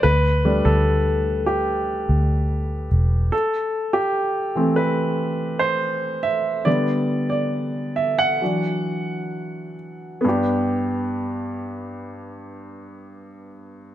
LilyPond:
<<
  \new Staff \with { instrumentName = "Grand piano" } { \time 4/4 \key g \major \tempo 4 = 70 b'8. a'4 g'4.~ g'16 r8 | a'8. g'4 b'4 c''8. e''8 | d''8. d''8. e''16 fis''4.~ fis''16 r8 | <b d' g'>1 | }
  \new Staff \with { instrumentName = "Grand piano" } { \clef bass \time 4/4 \key g \major r8 <g a d'>2.~ <g a d'>8 | r4. <e a c'>4. r4 | <d g b>4. r8 <e fis d'>2 | g,1 | }
  \new Staff \with { instrumentName = "Fingered electric bass" } { \clef bass \time 4/4 \key g \major d,8. d,4.~ d,16 d,4 e,,8 | r1 | r1 | r1 | }
>>